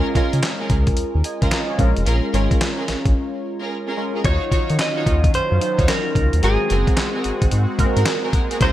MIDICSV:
0, 0, Header, 1, 7, 480
1, 0, Start_track
1, 0, Tempo, 545455
1, 1816, Time_signature, 4, 2, 24, 8
1, 7678, End_track
2, 0, Start_track
2, 0, Title_t, "Clean electric guitar"
2, 0, Program_c, 0, 27
2, 3744, Note_on_c, 0, 73, 100
2, 4187, Note_off_c, 0, 73, 0
2, 4231, Note_on_c, 0, 75, 98
2, 4671, Note_off_c, 0, 75, 0
2, 4707, Note_on_c, 0, 72, 98
2, 5184, Note_on_c, 0, 70, 86
2, 5196, Note_off_c, 0, 72, 0
2, 5666, Note_off_c, 0, 70, 0
2, 5670, Note_on_c, 0, 68, 85
2, 6588, Note_off_c, 0, 68, 0
2, 7590, Note_on_c, 0, 72, 99
2, 7678, Note_off_c, 0, 72, 0
2, 7678, End_track
3, 0, Start_track
3, 0, Title_t, "String section"
3, 0, Program_c, 1, 48
3, 133, Note_on_c, 1, 61, 75
3, 135, Note_on_c, 1, 65, 73
3, 138, Note_on_c, 1, 68, 67
3, 139, Note_on_c, 1, 70, 87
3, 297, Note_off_c, 1, 61, 0
3, 297, Note_off_c, 1, 65, 0
3, 299, Note_off_c, 1, 68, 0
3, 300, Note_off_c, 1, 70, 0
3, 527, Note_on_c, 1, 61, 72
3, 529, Note_on_c, 1, 65, 68
3, 530, Note_on_c, 1, 68, 73
3, 531, Note_on_c, 1, 70, 82
3, 628, Note_off_c, 1, 61, 0
3, 629, Note_off_c, 1, 65, 0
3, 629, Note_off_c, 1, 68, 0
3, 630, Note_off_c, 1, 70, 0
3, 1247, Note_on_c, 1, 61, 79
3, 1248, Note_on_c, 1, 65, 69
3, 1251, Note_on_c, 1, 68, 65
3, 1253, Note_on_c, 1, 70, 86
3, 1347, Note_off_c, 1, 61, 0
3, 1349, Note_off_c, 1, 65, 0
3, 1350, Note_off_c, 1, 68, 0
3, 1351, Note_off_c, 1, 70, 0
3, 1812, Note_on_c, 1, 61, 97
3, 1813, Note_on_c, 1, 65, 92
3, 1815, Note_on_c, 1, 68, 85
3, 1816, Note_on_c, 1, 70, 102
3, 1976, Note_off_c, 1, 61, 0
3, 1977, Note_off_c, 1, 65, 0
3, 1978, Note_off_c, 1, 68, 0
3, 1978, Note_off_c, 1, 70, 0
3, 2052, Note_on_c, 1, 61, 74
3, 2053, Note_on_c, 1, 65, 68
3, 2055, Note_on_c, 1, 68, 67
3, 2057, Note_on_c, 1, 70, 82
3, 2216, Note_off_c, 1, 61, 0
3, 2217, Note_off_c, 1, 65, 0
3, 2218, Note_off_c, 1, 68, 0
3, 2218, Note_off_c, 1, 70, 0
3, 2447, Note_on_c, 1, 61, 75
3, 2449, Note_on_c, 1, 65, 69
3, 2451, Note_on_c, 1, 68, 65
3, 2453, Note_on_c, 1, 70, 81
3, 2548, Note_off_c, 1, 61, 0
3, 2549, Note_off_c, 1, 65, 0
3, 2550, Note_off_c, 1, 68, 0
3, 2551, Note_off_c, 1, 70, 0
3, 3169, Note_on_c, 1, 61, 69
3, 3171, Note_on_c, 1, 65, 65
3, 3172, Note_on_c, 1, 68, 66
3, 3174, Note_on_c, 1, 70, 82
3, 3269, Note_off_c, 1, 61, 0
3, 3270, Note_off_c, 1, 65, 0
3, 3270, Note_off_c, 1, 68, 0
3, 3271, Note_off_c, 1, 70, 0
3, 3409, Note_on_c, 1, 61, 81
3, 3411, Note_on_c, 1, 65, 71
3, 3413, Note_on_c, 1, 68, 71
3, 3416, Note_on_c, 1, 70, 77
3, 3509, Note_off_c, 1, 61, 0
3, 3510, Note_off_c, 1, 65, 0
3, 3510, Note_off_c, 1, 68, 0
3, 3512, Note_off_c, 1, 70, 0
3, 3651, Note_on_c, 1, 61, 72
3, 3651, Note_on_c, 1, 65, 65
3, 3655, Note_on_c, 1, 68, 66
3, 3657, Note_on_c, 1, 70, 84
3, 3725, Note_off_c, 1, 65, 0
3, 3734, Note_on_c, 1, 63, 95
3, 3736, Note_on_c, 1, 65, 83
3, 3737, Note_on_c, 1, 66, 91
3, 3739, Note_on_c, 1, 73, 104
3, 3750, Note_off_c, 1, 61, 0
3, 3752, Note_off_c, 1, 68, 0
3, 3753, Note_off_c, 1, 70, 0
3, 3897, Note_off_c, 1, 63, 0
3, 3898, Note_off_c, 1, 65, 0
3, 3899, Note_off_c, 1, 66, 0
3, 3900, Note_off_c, 1, 73, 0
3, 3977, Note_on_c, 1, 63, 70
3, 3978, Note_on_c, 1, 65, 68
3, 3979, Note_on_c, 1, 66, 68
3, 3982, Note_on_c, 1, 73, 83
3, 4139, Note_off_c, 1, 63, 0
3, 4139, Note_off_c, 1, 65, 0
3, 4140, Note_off_c, 1, 66, 0
3, 4141, Note_off_c, 1, 73, 0
3, 4368, Note_on_c, 1, 63, 80
3, 4369, Note_on_c, 1, 65, 66
3, 4373, Note_on_c, 1, 66, 70
3, 4375, Note_on_c, 1, 73, 88
3, 4468, Note_off_c, 1, 63, 0
3, 4469, Note_off_c, 1, 65, 0
3, 4471, Note_off_c, 1, 66, 0
3, 4472, Note_off_c, 1, 73, 0
3, 5088, Note_on_c, 1, 63, 71
3, 5090, Note_on_c, 1, 65, 67
3, 5091, Note_on_c, 1, 66, 62
3, 5094, Note_on_c, 1, 73, 83
3, 5188, Note_off_c, 1, 63, 0
3, 5189, Note_off_c, 1, 65, 0
3, 5190, Note_off_c, 1, 66, 0
3, 5191, Note_off_c, 1, 73, 0
3, 5654, Note_on_c, 1, 60, 95
3, 5656, Note_on_c, 1, 66, 93
3, 5658, Note_on_c, 1, 68, 92
3, 5661, Note_on_c, 1, 70, 106
3, 5817, Note_off_c, 1, 60, 0
3, 5818, Note_off_c, 1, 66, 0
3, 5819, Note_off_c, 1, 68, 0
3, 5820, Note_off_c, 1, 70, 0
3, 5892, Note_on_c, 1, 60, 76
3, 5894, Note_on_c, 1, 66, 70
3, 5897, Note_on_c, 1, 68, 69
3, 5899, Note_on_c, 1, 70, 80
3, 6056, Note_off_c, 1, 60, 0
3, 6057, Note_off_c, 1, 66, 0
3, 6059, Note_off_c, 1, 68, 0
3, 6059, Note_off_c, 1, 70, 0
3, 6286, Note_on_c, 1, 60, 73
3, 6288, Note_on_c, 1, 66, 66
3, 6290, Note_on_c, 1, 68, 67
3, 6291, Note_on_c, 1, 70, 79
3, 6387, Note_off_c, 1, 60, 0
3, 6388, Note_off_c, 1, 66, 0
3, 6389, Note_off_c, 1, 68, 0
3, 6390, Note_off_c, 1, 70, 0
3, 7008, Note_on_c, 1, 60, 74
3, 7011, Note_on_c, 1, 66, 68
3, 7011, Note_on_c, 1, 68, 68
3, 7013, Note_on_c, 1, 70, 89
3, 7108, Note_off_c, 1, 60, 0
3, 7110, Note_off_c, 1, 66, 0
3, 7110, Note_off_c, 1, 68, 0
3, 7111, Note_off_c, 1, 70, 0
3, 7247, Note_on_c, 1, 60, 76
3, 7248, Note_on_c, 1, 66, 67
3, 7250, Note_on_c, 1, 68, 68
3, 7252, Note_on_c, 1, 70, 91
3, 7348, Note_off_c, 1, 60, 0
3, 7348, Note_off_c, 1, 66, 0
3, 7349, Note_off_c, 1, 68, 0
3, 7350, Note_off_c, 1, 70, 0
3, 7486, Note_on_c, 1, 60, 77
3, 7488, Note_on_c, 1, 66, 72
3, 7490, Note_on_c, 1, 68, 72
3, 7492, Note_on_c, 1, 70, 83
3, 7565, Note_off_c, 1, 68, 0
3, 7566, Note_off_c, 1, 70, 0
3, 7569, Note_on_c, 1, 61, 99
3, 7572, Note_on_c, 1, 65, 90
3, 7575, Note_on_c, 1, 68, 86
3, 7577, Note_on_c, 1, 70, 105
3, 7587, Note_off_c, 1, 60, 0
3, 7588, Note_off_c, 1, 66, 0
3, 7678, Note_off_c, 1, 61, 0
3, 7678, Note_off_c, 1, 65, 0
3, 7678, Note_off_c, 1, 68, 0
3, 7678, Note_off_c, 1, 70, 0
3, 7678, End_track
4, 0, Start_track
4, 0, Title_t, "Synth keys"
4, 0, Program_c, 2, 88
4, 0, Note_on_c, 2, 56, 84
4, 0, Note_on_c, 2, 61, 79
4, 0, Note_on_c, 2, 65, 74
4, 0, Note_on_c, 2, 70, 90
4, 0, Note_on_c, 2, 75, 49
4, 0, Note_on_c, 2, 80, 64
4, 36, Control_c, 2, 64, 127
4, 103, Note_off_c, 2, 56, 0
4, 106, Note_off_c, 2, 61, 0
4, 108, Note_off_c, 2, 65, 0
4, 109, Note_off_c, 2, 70, 0
4, 136, Note_on_c, 2, 56, 80
4, 138, Note_on_c, 2, 61, 77
4, 142, Note_on_c, 2, 65, 74
4, 145, Note_on_c, 2, 70, 90
4, 932, Note_off_c, 2, 56, 0
4, 933, Note_off_c, 2, 61, 0
4, 935, Note_off_c, 2, 65, 0
4, 936, Note_off_c, 2, 70, 0
4, 1099, Note_off_c, 2, 80, 0
4, 1099, Note_on_c, 2, 80, 59
4, 1104, Note_off_c, 2, 75, 0
4, 1104, Note_on_c, 2, 75, 51
4, 1245, Note_off_c, 2, 80, 0
4, 1247, Note_off_c, 2, 75, 0
4, 1255, Note_on_c, 2, 77, 70
4, 1261, Note_on_c, 2, 72, 54
4, 1335, Note_off_c, 2, 77, 0
4, 1337, Note_off_c, 2, 72, 0
4, 1338, Note_on_c, 2, 75, 75
4, 1343, Note_on_c, 2, 70, 59
4, 1484, Note_off_c, 2, 75, 0
4, 1487, Note_off_c, 2, 70, 0
4, 1495, Note_on_c, 2, 73, 70
4, 1502, Note_on_c, 2, 68, 59
4, 1576, Note_on_c, 2, 56, 86
4, 1578, Note_on_c, 2, 61, 77
4, 1583, Note_on_c, 2, 65, 78
4, 1588, Note_on_c, 2, 70, 95
4, 1589, Control_c, 2, 64, 0
4, 1721, Note_off_c, 2, 73, 0
4, 1725, Note_off_c, 2, 68, 0
4, 1745, Control_c, 2, 64, 127
4, 1992, Note_off_c, 2, 56, 0
4, 1992, Note_off_c, 2, 61, 0
4, 1995, Note_off_c, 2, 65, 0
4, 1998, Note_off_c, 2, 70, 0
4, 2055, Note_on_c, 2, 56, 81
4, 2057, Note_on_c, 2, 61, 78
4, 2062, Note_on_c, 2, 65, 74
4, 2067, Note_on_c, 2, 73, 90
4, 2851, Note_off_c, 2, 56, 0
4, 2852, Note_off_c, 2, 61, 0
4, 2855, Note_off_c, 2, 65, 0
4, 2857, Note_off_c, 2, 73, 0
4, 3493, Note_on_c, 2, 56, 71
4, 3497, Note_on_c, 2, 61, 70
4, 3499, Note_on_c, 2, 65, 67
4, 3502, Note_on_c, 2, 70, 87
4, 3703, Note_off_c, 2, 56, 0
4, 3704, Note_off_c, 2, 61, 0
4, 3705, Note_off_c, 2, 65, 0
4, 3707, Note_off_c, 2, 70, 0
4, 3732, Note_on_c, 2, 54, 72
4, 3733, Note_on_c, 2, 63, 67
4, 3738, Note_on_c, 2, 65, 65
4, 3744, Note_on_c, 2, 72, 64
4, 3749, Control_c, 2, 64, 0
4, 3799, Note_on_c, 2, 73, 84
4, 3814, Note_off_c, 2, 72, 0
4, 3904, Control_c, 2, 64, 127
4, 4530, Note_off_c, 2, 54, 0
4, 4530, Note_off_c, 2, 63, 0
4, 4533, Note_off_c, 2, 65, 0
4, 4563, Note_off_c, 2, 73, 0
4, 4934, Note_on_c, 2, 54, 73
4, 4937, Note_on_c, 2, 63, 66
4, 4943, Note_on_c, 2, 65, 61
4, 4944, Note_on_c, 2, 72, 77
4, 5549, Note_off_c, 2, 54, 0
4, 5551, Note_off_c, 2, 63, 0
4, 5554, Note_off_c, 2, 65, 0
4, 5554, Note_off_c, 2, 72, 0
4, 5652, Note_on_c, 2, 56, 71
4, 5658, Note_on_c, 2, 60, 69
4, 5658, Note_on_c, 2, 66, 68
4, 5664, Note_on_c, 2, 70, 80
4, 5669, Control_c, 2, 64, 0
4, 5839, Control_c, 2, 64, 127
4, 6450, Note_off_c, 2, 56, 0
4, 6453, Note_off_c, 2, 60, 0
4, 6453, Note_off_c, 2, 66, 0
4, 6456, Note_off_c, 2, 70, 0
4, 6848, Note_on_c, 2, 56, 87
4, 6853, Note_on_c, 2, 58, 65
4, 6855, Note_on_c, 2, 66, 82
4, 6862, Note_on_c, 2, 70, 103
4, 6911, Note_on_c, 2, 60, 82
4, 6928, Note_off_c, 2, 58, 0
4, 7466, Note_off_c, 2, 56, 0
4, 7470, Note_off_c, 2, 66, 0
4, 7473, Note_off_c, 2, 70, 0
4, 7498, Note_off_c, 2, 60, 0
4, 7573, Note_on_c, 2, 56, 72
4, 7578, Note_on_c, 2, 61, 70
4, 7581, Note_on_c, 2, 64, 60
4, 7584, Note_on_c, 2, 70, 82
4, 7588, Control_c, 2, 64, 0
4, 7638, Note_on_c, 2, 65, 70
4, 7652, Note_off_c, 2, 64, 0
4, 7678, Note_off_c, 2, 56, 0
4, 7678, Note_off_c, 2, 61, 0
4, 7678, Note_off_c, 2, 65, 0
4, 7678, Note_off_c, 2, 70, 0
4, 7678, End_track
5, 0, Start_track
5, 0, Title_t, "Analog synth pad"
5, 0, Program_c, 3, 89
5, 3734, Note_on_c, 3, 51, 77
5, 3734, Note_on_c, 3, 54, 89
5, 3734, Note_on_c, 3, 65, 77
5, 3735, Note_on_c, 3, 61, 70
5, 5636, Note_off_c, 3, 51, 0
5, 5636, Note_off_c, 3, 54, 0
5, 5636, Note_off_c, 3, 61, 0
5, 5636, Note_off_c, 3, 65, 0
5, 5663, Note_on_c, 3, 60, 72
5, 5665, Note_on_c, 3, 56, 78
5, 5669, Note_on_c, 3, 66, 84
5, 7561, Note_off_c, 3, 60, 0
5, 7564, Note_off_c, 3, 66, 0
5, 7583, Note_on_c, 3, 49, 82
5, 7584, Note_on_c, 3, 58, 76
5, 7585, Note_on_c, 3, 65, 93
5, 7678, Note_off_c, 3, 49, 0
5, 7678, Note_off_c, 3, 56, 0
5, 7678, Note_off_c, 3, 58, 0
5, 7678, Note_off_c, 3, 65, 0
5, 7678, End_track
6, 0, Start_track
6, 0, Title_t, "Analog synth bass"
6, 0, Program_c, 4, 38
6, 136, Note_on_c, 4, 49, 47
6, 198, Note_off_c, 4, 49, 0
6, 294, Note_on_c, 4, 49, 89
6, 362, Note_off_c, 4, 49, 0
6, 617, Note_on_c, 4, 37, 93
6, 812, Note_off_c, 4, 37, 0
6, 861, Note_on_c, 4, 39, 46
6, 921, Note_off_c, 4, 39, 0
6, 1011, Note_on_c, 4, 39, 88
6, 1081, Note_off_c, 4, 39, 0
6, 1252, Note_on_c, 4, 37, 83
6, 1321, Note_off_c, 4, 37, 0
6, 1576, Note_on_c, 4, 34, 104
6, 1702, Note_off_c, 4, 34, 0
6, 1737, Note_on_c, 4, 29, 79
6, 1804, Note_off_c, 4, 29, 0
6, 1818, Note_on_c, 4, 34, 103
6, 1943, Note_off_c, 4, 34, 0
6, 2056, Note_on_c, 4, 32, 95
6, 2182, Note_off_c, 4, 32, 0
6, 2543, Note_on_c, 4, 34, 49
6, 2603, Note_off_c, 4, 34, 0
6, 2691, Note_on_c, 4, 34, 90
6, 2761, Note_off_c, 4, 34, 0
6, 3739, Note_on_c, 4, 39, 115
6, 3864, Note_off_c, 4, 39, 0
6, 3976, Note_on_c, 4, 51, 47
6, 4038, Note_off_c, 4, 51, 0
6, 4137, Note_on_c, 4, 51, 94
6, 4204, Note_off_c, 4, 51, 0
6, 4462, Note_on_c, 4, 39, 93
6, 4655, Note_off_c, 4, 39, 0
6, 4700, Note_on_c, 4, 42, 47
6, 4761, Note_off_c, 4, 42, 0
6, 4855, Note_on_c, 4, 42, 96
6, 4923, Note_off_c, 4, 42, 0
6, 5095, Note_on_c, 4, 39, 96
6, 5163, Note_off_c, 4, 39, 0
6, 5419, Note_on_c, 4, 37, 84
6, 5544, Note_off_c, 4, 37, 0
6, 5573, Note_on_c, 4, 39, 83
6, 5642, Note_off_c, 4, 39, 0
6, 5660, Note_on_c, 4, 32, 106
6, 5784, Note_off_c, 4, 32, 0
6, 5903, Note_on_c, 4, 30, 98
6, 6026, Note_off_c, 4, 30, 0
6, 6380, Note_on_c, 4, 32, 52
6, 6441, Note_off_c, 4, 32, 0
6, 6531, Note_on_c, 4, 32, 94
6, 6601, Note_off_c, 4, 32, 0
6, 6619, Note_on_c, 4, 44, 90
6, 6744, Note_off_c, 4, 44, 0
6, 6854, Note_on_c, 4, 44, 53
6, 6916, Note_off_c, 4, 44, 0
6, 7009, Note_on_c, 4, 44, 93
6, 7080, Note_off_c, 4, 44, 0
6, 7577, Note_on_c, 4, 37, 106
6, 7678, Note_off_c, 4, 37, 0
6, 7678, End_track
7, 0, Start_track
7, 0, Title_t, "Drums"
7, 134, Note_on_c, 9, 36, 78
7, 136, Note_on_c, 9, 42, 61
7, 222, Note_off_c, 9, 36, 0
7, 224, Note_off_c, 9, 42, 0
7, 291, Note_on_c, 9, 42, 49
7, 375, Note_off_c, 9, 42, 0
7, 375, Note_on_c, 9, 42, 73
7, 377, Note_on_c, 9, 38, 92
7, 382, Note_on_c, 9, 39, 78
7, 463, Note_off_c, 9, 42, 0
7, 465, Note_off_c, 9, 38, 0
7, 470, Note_off_c, 9, 39, 0
7, 613, Note_on_c, 9, 42, 57
7, 615, Note_on_c, 9, 36, 90
7, 701, Note_off_c, 9, 42, 0
7, 703, Note_off_c, 9, 36, 0
7, 764, Note_on_c, 9, 42, 56
7, 767, Note_on_c, 9, 36, 82
7, 851, Note_off_c, 9, 42, 0
7, 851, Note_on_c, 9, 42, 77
7, 855, Note_off_c, 9, 36, 0
7, 939, Note_off_c, 9, 42, 0
7, 1093, Note_on_c, 9, 42, 76
7, 1181, Note_off_c, 9, 42, 0
7, 1249, Note_on_c, 9, 42, 56
7, 1250, Note_on_c, 9, 36, 92
7, 1333, Note_off_c, 9, 42, 0
7, 1333, Note_on_c, 9, 38, 110
7, 1333, Note_on_c, 9, 42, 58
7, 1338, Note_off_c, 9, 36, 0
7, 1338, Note_on_c, 9, 39, 82
7, 1421, Note_off_c, 9, 38, 0
7, 1421, Note_off_c, 9, 42, 0
7, 1426, Note_off_c, 9, 39, 0
7, 1573, Note_on_c, 9, 36, 80
7, 1574, Note_on_c, 9, 42, 59
7, 1661, Note_off_c, 9, 36, 0
7, 1662, Note_off_c, 9, 42, 0
7, 1729, Note_on_c, 9, 42, 51
7, 1817, Note_off_c, 9, 42, 0
7, 1817, Note_on_c, 9, 42, 74
7, 1905, Note_off_c, 9, 42, 0
7, 2059, Note_on_c, 9, 42, 58
7, 2147, Note_off_c, 9, 42, 0
7, 2210, Note_on_c, 9, 36, 89
7, 2213, Note_on_c, 9, 42, 49
7, 2295, Note_off_c, 9, 42, 0
7, 2295, Note_on_c, 9, 42, 74
7, 2298, Note_off_c, 9, 36, 0
7, 2298, Note_on_c, 9, 38, 102
7, 2303, Note_on_c, 9, 39, 79
7, 2383, Note_off_c, 9, 42, 0
7, 2386, Note_off_c, 9, 38, 0
7, 2391, Note_off_c, 9, 39, 0
7, 2536, Note_on_c, 9, 38, 69
7, 2536, Note_on_c, 9, 42, 61
7, 2624, Note_off_c, 9, 38, 0
7, 2624, Note_off_c, 9, 42, 0
7, 2688, Note_on_c, 9, 42, 52
7, 2689, Note_on_c, 9, 36, 83
7, 2776, Note_off_c, 9, 42, 0
7, 2777, Note_off_c, 9, 36, 0
7, 3736, Note_on_c, 9, 36, 105
7, 3736, Note_on_c, 9, 42, 76
7, 3824, Note_off_c, 9, 36, 0
7, 3824, Note_off_c, 9, 42, 0
7, 3974, Note_on_c, 9, 36, 82
7, 3978, Note_on_c, 9, 42, 63
7, 4062, Note_off_c, 9, 36, 0
7, 4066, Note_off_c, 9, 42, 0
7, 4132, Note_on_c, 9, 42, 51
7, 4214, Note_off_c, 9, 42, 0
7, 4214, Note_on_c, 9, 42, 75
7, 4216, Note_on_c, 9, 38, 99
7, 4221, Note_on_c, 9, 39, 81
7, 4302, Note_off_c, 9, 42, 0
7, 4304, Note_off_c, 9, 38, 0
7, 4309, Note_off_c, 9, 39, 0
7, 4457, Note_on_c, 9, 36, 94
7, 4459, Note_on_c, 9, 42, 59
7, 4545, Note_off_c, 9, 36, 0
7, 4547, Note_off_c, 9, 42, 0
7, 4611, Note_on_c, 9, 36, 85
7, 4613, Note_on_c, 9, 42, 54
7, 4699, Note_off_c, 9, 36, 0
7, 4699, Note_off_c, 9, 42, 0
7, 4699, Note_on_c, 9, 42, 77
7, 4787, Note_off_c, 9, 42, 0
7, 4941, Note_on_c, 9, 42, 72
7, 5029, Note_off_c, 9, 42, 0
7, 5092, Note_on_c, 9, 36, 92
7, 5094, Note_on_c, 9, 42, 52
7, 5177, Note_off_c, 9, 42, 0
7, 5177, Note_on_c, 9, 38, 111
7, 5177, Note_on_c, 9, 42, 59
7, 5180, Note_off_c, 9, 36, 0
7, 5182, Note_on_c, 9, 39, 93
7, 5265, Note_off_c, 9, 38, 0
7, 5265, Note_off_c, 9, 42, 0
7, 5270, Note_off_c, 9, 39, 0
7, 5415, Note_on_c, 9, 36, 81
7, 5419, Note_on_c, 9, 42, 59
7, 5503, Note_off_c, 9, 36, 0
7, 5507, Note_off_c, 9, 42, 0
7, 5571, Note_on_c, 9, 42, 52
7, 5657, Note_off_c, 9, 42, 0
7, 5657, Note_on_c, 9, 42, 75
7, 5745, Note_off_c, 9, 42, 0
7, 5896, Note_on_c, 9, 42, 60
7, 5984, Note_off_c, 9, 42, 0
7, 6049, Note_on_c, 9, 36, 87
7, 6051, Note_on_c, 9, 42, 48
7, 6131, Note_off_c, 9, 42, 0
7, 6131, Note_on_c, 9, 42, 75
7, 6134, Note_on_c, 9, 38, 98
7, 6137, Note_off_c, 9, 36, 0
7, 6139, Note_on_c, 9, 39, 78
7, 6219, Note_off_c, 9, 42, 0
7, 6222, Note_off_c, 9, 38, 0
7, 6227, Note_off_c, 9, 39, 0
7, 6373, Note_on_c, 9, 42, 61
7, 6461, Note_off_c, 9, 42, 0
7, 6527, Note_on_c, 9, 36, 82
7, 6527, Note_on_c, 9, 42, 56
7, 6613, Note_off_c, 9, 42, 0
7, 6613, Note_on_c, 9, 42, 85
7, 6615, Note_off_c, 9, 36, 0
7, 6701, Note_off_c, 9, 42, 0
7, 6854, Note_on_c, 9, 36, 86
7, 6855, Note_on_c, 9, 42, 75
7, 6942, Note_off_c, 9, 36, 0
7, 6943, Note_off_c, 9, 42, 0
7, 7010, Note_on_c, 9, 42, 58
7, 7090, Note_off_c, 9, 42, 0
7, 7090, Note_on_c, 9, 38, 112
7, 7090, Note_on_c, 9, 42, 61
7, 7095, Note_on_c, 9, 39, 90
7, 7178, Note_off_c, 9, 38, 0
7, 7178, Note_off_c, 9, 42, 0
7, 7183, Note_off_c, 9, 39, 0
7, 7332, Note_on_c, 9, 36, 85
7, 7333, Note_on_c, 9, 42, 63
7, 7420, Note_off_c, 9, 36, 0
7, 7421, Note_off_c, 9, 42, 0
7, 7488, Note_on_c, 9, 42, 54
7, 7574, Note_off_c, 9, 42, 0
7, 7574, Note_on_c, 9, 42, 77
7, 7575, Note_on_c, 9, 36, 111
7, 7662, Note_off_c, 9, 42, 0
7, 7663, Note_off_c, 9, 36, 0
7, 7678, End_track
0, 0, End_of_file